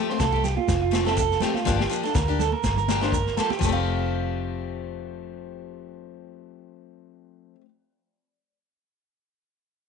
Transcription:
0.09 A3 C4 C5, snare
0.20 C2 A4, kick, snare, shekere
0.32 A3 G4
0.44 G4, snare, low conga, shekere
0.57 F4, high conga
0.68 F1, kick, snare, high conga, shekere
0.82 F4
0.91 F3 A3 C4 G4, snare, high conga, shekere
1.05 A3 C4 G4 A4, snare, shekere
1.17 A4, kick, shekere
1.31 snare, shekere
1.40 F3 A3 C4 G4, snare, low conga, shekere
1.54 F4, snare, high conga, shekere
1.65 G1 F3 A#3 D4 G4, kick, snare, shekere
1.79 G4, snare
1.90 F3 A#3 D4, shekere
2.03 D4 A4, muted steel-string acoustic guitar stroke, snare, shekere
2.15 D2 A#4, kick, snare, shekere
2.28 A#3 D4 G4, shekere
2.39 A4, snare, low conga, shekere
2.52 A#4, high conga
2.63 G1, kick, snare, high conga, shekere
2.77 A#4, low conga, shekere
2.88 F3 A#3 D4 G4, snare, high conga, shekere
3.01 A#3 D4 G4 C5, snare, shekere
3.12 A#4, kick, shekere
3.26 snare, shekere
3.37 F3 A#3 G4 A4, snare, shekere
3.50 G4, snare, high conga, shekere
3.59 F1 F3 G4, kick, crash, high conga, shekere
3.64 A3 A4
3.69 C4 G4, muted clean electric guitar stroke
3.73 F5

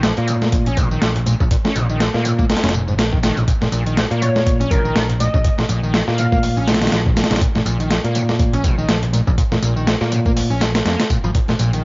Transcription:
Already playing: A#1
0.03 F3, snare, closed hi-hat, tambourine, high conga
0.17 A#2 A#3, closed hi-hat
0.28 G#2, closed hi-hat, tambourine
0.42 A#3, snare, tambourine, high conga
0.52 A#1, kick, closed hi-hat, tambourine
0.66 A#1 C#4, closed hi-hat, tambourine
0.77 A#2, kick, closed hi-hat, tambourine, high conga
0.91 D#3, tambourine
1.02 A#1 F3, snare, closed hi-hat, tambourine
1.16 A#2, closed hi-hat
1.26 A#2, closed hi-hat, tambourine, high conga
1.40 A#1 C#3, kick, tambourine
1.51 A#2, kick, closed hi-hat, tambourine
1.65 C#4, snare, tambourine, high conga, low conga
1.75 A#1 A#2, closed hi-hat, tambourine
1.89 D#3, tambourine
2.00 F3, snare, closed hi-hat, tambourine, high conga
2.14 A#2 A#3, snare
2.25 G#2, closed hi-hat, tambourine
2.38 A#3, kick, tambourine, high conga
2.49 A#1, snare, closed hi-hat, tambourine
2.57 snare, closed hi-hat
2.63 F1 C#4, snare, closed hi-hat, tambourine
2.69 snare, closed hi-hat
2.73 A#2, tambourine, high conga
2.88 G#2, tambourine
2.98 A#1 A#3, snare, closed hi-hat, tambourine
3.12 D#3, kick
3.23 D#3, snare, closed hi-hat, tambourine, high conga
3.37 A#1 G#2, closed hi-hat, tambourine
3.47 A#2, kick, closed hi-hat, tambourine
3.61 A#2, snare, tambourine, high conga, low conga
3.72 A#1 A#2, closed hi-hat, tambourine
3.86 D#3, closed hi-hat, tambourine
3.97 F3, snare, closed hi-hat, tambourine, high conga
4.10 A#2 A#3, closed hi-hat
4.21 G#2 C#5, closed hi-hat, tambourine
4.35 A#3, snare, tambourine, high conga
4.46 A#1, kick, closed hi-hat, tambourine
4.60 A#1 C#4, closed hi-hat, tambourine
4.70 A#2 A#4, kick, closed hi-hat, tambourine, high conga
4.84 D#3, tambourine
4.95 A#1 F3, snare, closed hi-hat, tambourine
5.09 A#2, closed hi-hat
5.20 A#2 D#5, closed hi-hat, tambourine, high conga
5.34 A#1 C#3, kick, tambourine
5.44 A#2, kick, closed hi-hat, tambourine
5.58 A#2, snare, tambourine, high conga, low conga
5.69 A#1 A#2, closed hi-hat, tambourine
5.83 D#3, tambourine
5.94 F3, snare, closed hi-hat, tambourine, high conga
6.07 A#2 A#3, snare
6.18 G#2 F5, closed hi-hat, tambourine
6.32 A#3 F5, kick, tambourine, high conga
6.43 A#1, open hi-hat, tambourine
6.57 A#1 C#4, tambourine
6.68 A#2, snare, closed hi-hat, tambourine, high conga
6.75 snare, closed hi-hat
6.82 D#3, snare, closed hi-hat, tambourine
6.87 snare, closed hi-hat
6.92 A#1 F3, snare, closed hi-hat, tambourine
7.06 A#2, kick
7.16 A#2, snare, closed hi-hat, tambourine, high conga
7.24 snare, closed hi-hat
7.31 A#1 C#3, snare, closed hi-hat, tambourine
7.36 snare, closed hi-hat
7.41 A#2, kick, closed hi-hat, tambourine
7.55 A#2, snare, tambourine, high conga, low conga
7.66 A#1 A#2, closed hi-hat, tambourine
7.80 D#3, closed hi-hat, tambourine
7.90 F3, snare, closed hi-hat, tambourine, high conga
8.04 A#2 A#3, closed hi-hat
8.15 G#2, closed hi-hat, tambourine
8.29 A#3, snare, tambourine, high conga
8.39 A#1, kick, closed hi-hat, tambourine
8.53 A#1 C#4, closed hi-hat, tambourine
8.64 A#2, kick, closed hi-hat, tambourine, high conga
8.78 D#3, tambourine
8.89 A#1 F3, snare, closed hi-hat, tambourine
9.03 A#2, closed hi-hat
9.13 A#2, closed hi-hat, tambourine, high conga
9.27 A#1 C#3, kick, tambourine
9.38 A#2, kick, closed hi-hat, tambourine
9.52 A#2, snare, tambourine, high conga, low conga
9.62 A#1 A#2, closed hi-hat, tambourine
9.76 D#3, tambourine
9.87 F3, snare, closed hi-hat, tambourine, high conga
10.01 A#2 A#3, snare, tambourine
10.12 G#2, closed hi-hat, tambourine
10.25 A#3, kick, tambourine, high conga
10.36 A#1, open hi-hat, tambourine
10.50 A#1 C#4, tambourine
10.61 D#3, snare, closed hi-hat, tambourine, high conga
10.75 A#3, snare, closed hi-hat, tambourine
10.85 F2 A#3, snare, closed hi-hat, tambourine
10.99 G#2, snare, closed hi-hat, tambourine
11.10 A#2, kick, closed hi-hat, tambourine, high conga
11.24 G#1 F3, tambourine
11.34 A#2, kick, closed hi-hat, tambourine
11.48 A#2, snare, tambourine, high conga, low conga
11.59 A#1 A#2, closed hi-hat, tambourine
11.73 D#3, closed hi-hat, tambourine

